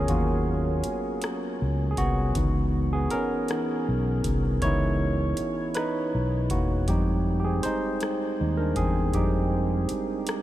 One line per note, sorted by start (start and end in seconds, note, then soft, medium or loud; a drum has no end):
0.00 0.09 F#3 soft
0.00 2.00 B3 medium
0.00 0.10 C#4 medium
0.00 0.10 F4 medium
0.00 0.10 G#4 medium
0.00 2.38 A#4 medium
0.00 2.37 C#5 medium
0.08 0.81 D#2 medium
0.08 2.31 F#3 soft
0.08 1.57 A#3 medium
0.08 2.32 C#4 soft
0.08 2.32 F4 medium
0.08 1.56 F#4 medium
0.08 kick loud
0.08 closed hi-hat medium
0.84 muted fretless electric bass stroke soft
0.84 closed hi-hat medium
1.22 cross-stick medium
1.22 closed hi-hat medium
1.62 1.95 C#2 medium
1.91 1.98 G#4 medium
1.97 2.32 C2 medium
1.97 2.36 B3 medium
1.97 2.95 F#4 medium
1.97 kick medium
1.97 closed hi-hat medium
2.35 3.07 C#2 medium
2.35 3.49 E3 soft
2.35 2.93 B3 soft
2.35 3.49 D#4 soft
2.35 kick loud
2.35 closed hi-hat medium
2.93 3.02 B3 medium
2.93 3.01 G#4 medium
3.10 4.59 C#4 medium
3.10 4.66 A#4 medium
3.10 muted fretless electric bass stroke soft
3.10 closed hi-hat medium
3.48 3.83 E3 soft
3.48 3.83 B3 soft
3.48 3.83 D#4 soft
3.48 cross-stick medium
3.48 closed hi-hat medium
3.88 4.21 B1 medium
4.24 4.59 C2 medium
4.24 kick medium
4.24 closed hi-hat medium
4.62 5.34 C#2 medium
4.62 5.12 E3 soft
4.62 5.13 B3 soft
4.62 5.13 D#4 medium
4.62 5.72 E4 medium
4.62 5.78 C#5 medium
4.62 kick loud
4.62 closed hi-hat medium
5.37 muted fretless electric bass stroke soft
5.37 closed hi-hat medium
5.75 6.48 D#4 medium
5.75 6.53 B4 medium
5.75 cross-stick medium
5.75 closed hi-hat medium
6.15 6.48 B1 medium
6.50 6.85 E1 medium
6.50 6.87 A#3 medium
6.50 6.89 F#4 medium
6.50 kick medium
6.50 closed hi-hat medium
6.88 7.60 F2 medium
6.88 7.98 G3 soft
6.88 7.98 G#3 soft
6.88 7.38 C4 medium
6.88 7.64 D#4 medium
6.88 7.36 G4 medium
6.88 kick loud
6.88 closed hi-hat medium
7.40 7.45 G4 medium
7.45 7.63 C4 medium
7.45 7.64 G#4 medium
7.63 8.39 D#4 medium
7.63 8.60 C5 medium
7.63 muted fretless electric bass stroke soft
7.63 closed hi-hat medium
8.00 cross-stick medium
8.00 closed hi-hat medium
8.40 8.74 D#2 medium
8.40 8.73 G3 soft
8.40 8.74 G#3 soft
8.40 8.74 D#4 soft
8.57 8.76 D4 medium
8.57 8.75 A#4 medium
8.76 9.11 E2 medium
8.76 9.13 C4 medium
8.76 9.15 G#4 medium
8.76 kick medium
8.76 closed hi-hat medium
9.14 9.86 F2 medium
9.14 10.42 G3 soft
9.14 10.42 G#3 soft
9.14 10.42 C4 medium
9.14 10.42 D#4 medium
9.14 10.42 G4 medium
9.14 kick loud
9.14 closed hi-hat medium
9.89 muted fretless electric bass stroke soft
9.89 closed hi-hat medium
10.27 cross-stick medium
10.27 closed hi-hat medium